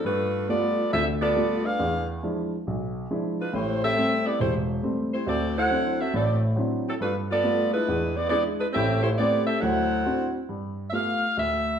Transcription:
0.04 G2 A3 D4 F4 B4
0.49 G3 A3 B3 F4 A4 D5
0.93 D2 D3 C4 F4 A4 E5
1.21 B3 F4 A4 D5
1.35 G3 A3 B3 F4
1.64 D4 G#4 B4 F5
1.80 E2
2.23 F3 G#3 D4 E4
2.67 B1
3.10 F3 G#3 D4 E4
3.40 G#3 D4 F4 B4
3.53 A1 A2 A3 E4 G4 C5
3.83 C4 G4 A4 E5
3.97 G3 A3 C4
4.26 B3 E4 G4 D5
4.40 E1 A3 E4 G4 C5
4.83 G3 A3 C4
5.13 A3 E4 G4 C5
5.27 D2 C4 F#4 A4 D5
5.58 E4 A4 C5 F#5
5.70 F#3 C4 D4 E4
6.01 C4 F#4 A4 E5
6.13 A1 A2 C4 F#4 A4 D5
6.56 F#3 C4 D4 E4
6.88 F#3 C4 E4 A4
7.00 G2 A3 D4 F4 B4
7.31 B3 F4 A4 D5
7.43 G3 A3 B3 F4
7.73 G#3 D4 E4 B4
7.88 E2
8.16 B3 E4 G#4 D5
8.29 G#3 B3 D4 E4 G#4 D5
8.59 G#3 D4 E4 B4
8.73 A1 A2 C4 G4 A4 E5
9.02 A3 E4 G4 C5
9.17 A3 B3 C4 E4 G4 D5
9.46 C4 G4 A4 E5
9.61 D2 F#3 E4 A4 C5 F#5
10.05 C4 D4 E4 F#4
10.49 G2
10.90 A3 B3 F4 G4 E5
10.94 F5
11.37 D2 E5

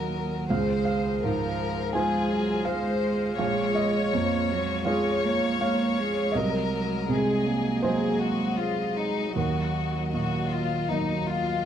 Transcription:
Already playing: D#2 A#2 F#3 A#3 F#4 A#4 D#5 F#5
0.50 C#2 G#3 F4 C5 F5
0.85 F5
1.23 G#2 F3 A#4
1.93 F3 G#3 F4 G#4 C5 G#5
2.31 F#3
2.64 G#3 C5 F5
3.38 A#1 G#3 C#5 F5
3.75 D#5
4.13 F2 A#3
4.51 F#3
4.85 G#3 F4 C#5 F5
5.24 A#3
5.61 A#3 F5
5.99 G#3
6.32 C2 F#3 G#3 A#4 D#5
6.71 F#3
7.07 C3 G#3 G#4
7.45 A#3
7.82 F#3 G#3 G#4 C5 D#5
8.19 F#4
8.57 G#3 F4
8.96 D#4
9.35 D#2 F#3 A#3 F#4 A#4
10.11 A#2 F#4
10.51 F4
10.88 F#3 A#3 D#4 D#5
11.28 F4

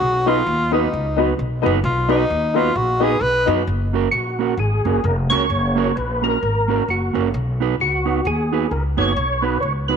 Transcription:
Already playing: F#4
0.01 B1
0.26 B3 D#4 F4 F#4 B4 D#5
0.46 D#2
0.72 B3 D#4 F#4 B4 D#5
0.92 C#2, muted clean electric guitar stroke
1.17 B3 D#4 F#4 B4 D#5
1.37 B1, muted clean electric guitar stroke
1.62 B3 D#4 F#4 B4 D#5
1.66 F#1
1.84 B1 F4
2.09 B3 D#4 F#4 B4 D#5
2.30 D#2
2.54 B3 D#4 F4 F#4 B4 D#5
2.58 B4
2.75 A#1 F#4, muted clean electric guitar stroke
3.00 B3 D#4 F#4 G#4 B4 D#5
3.21 B1 B4
3.46 F#2 B3 D#4 F#4 B4 D#5
3.67 F#1
3.93 A#3 C#4 F#4 A#4
4.12 A#1 F#4
4.39 A#3 C#4 F#4 A#4
4.57 G#1 G#4, muted clean electric guitar stroke
4.85 F#1 A#3 C#4 F#4 A#4
5.04 F1 A#4, muted clean electric guitar stroke
5.30 C#2 A#3 C#4 F#4 A#4 C#5
5.50 F#1
5.75 A#3 C#4 F#4 A#4
5.95 A#1 B4
6.22 A#3 C#4 F#4 A#4
6.42 G#1, muted clean electric guitar stroke
6.68 A#3 C#4 F#4 A#4
6.88 F#1 F#4
7.13 F#1 A#3 C#4 F#4 A#4
7.34 B1
7.60 B3 D#4 F#4 B4
7.80 C#2 F#4
8.05 B3 D#4 F#4 B4
8.25 D#2 G#4, muted clean electric guitar stroke
8.52 B3 D#4 F#4 B4
8.71 C#2 A#4, muted clean electric guitar stroke
8.97 F#1 B3 D#4 F#4 B4 C#5
9.16 B1
9.42 B3 D#4 F#4 B4
9.60 C#2 C#5
9.88 B3 D#4 F#4 B4

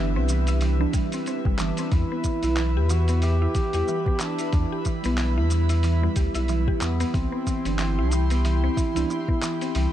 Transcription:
Already playing: G1 E3 B3 D4 E4 G4 B4 E5
0.15 C2 C4
0.28 E3, open hi-hat, shaker
0.47 E4, open hi-hat, shaker
0.61 E3, open hi-hat, shaker
0.79 E3 B3 D4
0.93 G3, kick, open hi-hat, shaker
1.12 C4, open hi-hat, shaker
1.26 C4, open hi-hat, shaker
1.45 G1 G3, kick
1.59 G1 E3 B3 D4, clap, open hi-hat, shaker
1.77 C4, open hi-hat, shaker
1.92 E2 E3 E4 B5, kick, open hi-hat, shaker
2.12 B3
2.24 E3, kick, open hi-hat, shaker
2.42 B1 G3 B3 E4, open hi-hat, shaker
2.57 E3, clap, open hi-hat, shaker
2.76 E2 G4
2.89 E3 F#4, open hi-hat, shaker
3.08 B3, open hi-hat, shaker
3.22 E3 G4, open hi-hat, shaker
3.42 E4
3.55 E3, kick, open hi-hat, shaker
3.73 E2 G3 B3 E4 G4, open hi-hat, shaker
3.88 E3, shaker
4.06 B3, kick
4.20 E3 D4, clap, open hi-hat, shaker
4.39 E4, open hi-hat, shaker
4.53 E2 E3, kick, open hi-hat, shaker
4.72 G4
4.85 E3, kick, open hi-hat, shaker
5.02 B1 G3 B3 E4, open hi-hat, shaker
5.18 E3, clap, open hi-hat, shaker
5.37 E2 E4
5.50 E3, open hi-hat, shaker
5.69 E4, open hi-hat, shaker
5.83 E3, open hi-hat, shaker
6.02 G3 B3 E4
6.16 D2 G4, kick, open hi-hat, shaker
6.33 B1 G3 B3 E4, open hi-hat, shaker
6.37 E4
6.48 E3, open hi-hat, shaker
6.68 G4, kick
6.81 E2 E3 B3, clap, open hi-hat, shaker
7.00 B3, open hi-hat, shaker
7.14 C2 E3 C4 G4 G5 C6, kick, open hi-hat, shaker
7.32 B3
7.47 E3, kick, open hi-hat, shaker
7.65 G1 E3 B3 C4 D4, open hi-hat, shaker
7.79 E3, clap, open hi-hat, shaker
7.98 C2 E4
8.11 E3 E4, open hi-hat, shaker
8.30 B3, open hi-hat, shaker
8.45 E3, open hi-hat, shaker
8.64 C4
8.77 E3, kick, open hi-hat, shaker
8.95 C2 E3 B3 D4 E4, open hi-hat, shaker
9.10 E3, shaker
9.28 B3, kick
9.42 E3, clap, open hi-hat, shaker
9.61 C4, open hi-hat, shaker
9.75 C2 E3 B5, open hi-hat, shaker

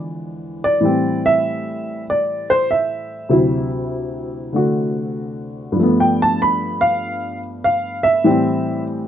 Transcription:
Already playing: E2 D3 E3 F3 G#3
0.64 D5
0.81 A2 E3 G3
0.85 C4
1.26 E5
2.10 D5
2.50 C5
2.71 E5
3.29 D2 C3 F#3 E4
4.53 D3 A3 F#4
5.72 G2 F3
5.79 A3 B3
6.00 G5
6.22 A5
6.42 B5
6.81 F5
7.64 F5
8.03 E5
8.24 A2 E3 G3 C4

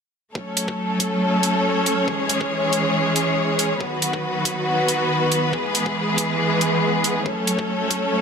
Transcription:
0.35 F#3 A3 C#4 A4 C#5, kick
0.57 closed hi-hat
0.68 kick
1.00 kick, closed hi-hat
1.43 closed hi-hat
1.86 closed hi-hat
2.08 E3 G#3 G#4, kick
2.29 closed hi-hat
2.41 kick
2.73 closed hi-hat
3.16 closed hi-hat
3.59 closed hi-hat
3.81 D#3 F#3 B3 F#4 B4, kick
4.02 closed hi-hat
4.13 kick
4.45 kick, closed hi-hat
4.88 closed hi-hat
5.32 closed hi-hat
5.53 E3 G#3 G#4, kick
5.75 closed hi-hat
5.86 kick
6.18 kick, closed hi-hat
6.61 closed hi-hat
7.04 closed hi-hat
7.26 F#3 A3 C#4 A4 C#5, kick
7.47 closed hi-hat
7.59 kick
7.91 kick, closed hi-hat

